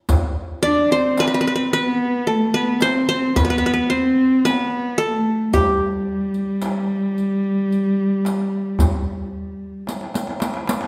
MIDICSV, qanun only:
0, 0, Header, 1, 2, 480
1, 0, Start_track
1, 0, Tempo, 1084991
1, 44, Time_signature, 10, 3, 24, 8
1, 4810, End_track
2, 0, Start_track
2, 0, Title_t, "Qanun"
2, 0, Program_c, 0, 107
2, 277, Note_on_c, 0, 74, 108
2, 407, Note_on_c, 0, 72, 91
2, 531, Note_on_c, 0, 71, 99
2, 557, Note_off_c, 0, 72, 0
2, 562, Note_off_c, 0, 71, 0
2, 564, Note_on_c, 0, 71, 68
2, 592, Note_off_c, 0, 71, 0
2, 594, Note_on_c, 0, 71, 80
2, 621, Note_off_c, 0, 71, 0
2, 623, Note_on_c, 0, 71, 70
2, 651, Note_off_c, 0, 71, 0
2, 652, Note_on_c, 0, 71, 73
2, 686, Note_off_c, 0, 71, 0
2, 688, Note_on_c, 0, 71, 70
2, 712, Note_off_c, 0, 74, 0
2, 765, Note_off_c, 0, 71, 0
2, 766, Note_on_c, 0, 71, 101
2, 1004, Note_on_c, 0, 69, 81
2, 1122, Note_off_c, 0, 71, 0
2, 1124, Note_on_c, 0, 71, 89
2, 1248, Note_on_c, 0, 72, 100
2, 1274, Note_off_c, 0, 71, 0
2, 1364, Note_off_c, 0, 72, 0
2, 1366, Note_on_c, 0, 72, 97
2, 1487, Note_on_c, 0, 71, 91
2, 1514, Note_off_c, 0, 72, 0
2, 1522, Note_off_c, 0, 69, 0
2, 1523, Note_off_c, 0, 71, 0
2, 1525, Note_on_c, 0, 71, 67
2, 1547, Note_off_c, 0, 71, 0
2, 1549, Note_on_c, 0, 71, 79
2, 1583, Note_off_c, 0, 71, 0
2, 1584, Note_on_c, 0, 71, 69
2, 1618, Note_off_c, 0, 71, 0
2, 1620, Note_on_c, 0, 71, 76
2, 1651, Note_off_c, 0, 71, 0
2, 1653, Note_on_c, 0, 71, 70
2, 1725, Note_on_c, 0, 72, 85
2, 1751, Note_off_c, 0, 71, 0
2, 1969, Note_on_c, 0, 71, 93
2, 1996, Note_off_c, 0, 72, 0
2, 2203, Note_on_c, 0, 69, 88
2, 2449, Note_on_c, 0, 67, 74
2, 2455, Note_off_c, 0, 71, 0
2, 2720, Note_off_c, 0, 69, 0
2, 4346, Note_off_c, 0, 67, 0
2, 4810, End_track
0, 0, End_of_file